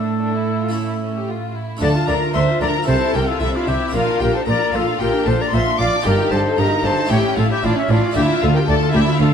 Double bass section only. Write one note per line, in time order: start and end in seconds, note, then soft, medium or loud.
1.81 1.89 D2 medium
2.08 2.16 D2 medium
2.35 2.43 D2 medium
2.61 2.69 D2 medium
2.88 2.96 C2 medium
3.14 3.22 C2 medium
3.41 3.49 C2 medium
3.67 3.75 C2 medium
3.93 4.01 A#1 medium
4.20 4.28 A#1 medium
4.46 4.54 A#1 medium
4.72 4.80 A#1 medium
4.99 5.07 A#1 medium
5.26 5.34 A#1 medium
5.52 5.60 A#1 medium
5.79 5.87 A#1 medium
6.06 6.14 G1 medium
6.31 6.39 G1 medium
6.58 6.66 G1 medium
6.84 6.92 G1 medium
7.11 7.19 A1 medium
7.37 7.45 A1 medium
7.63 7.71 A1 medium
7.89 7.97 A1 medium
8.15 8.23 D2 loud
8.43 8.51 D2 medium
8.69 8.77 D2 medium
8.95 9.03 D2 medium
9.20 9.28 D2 medium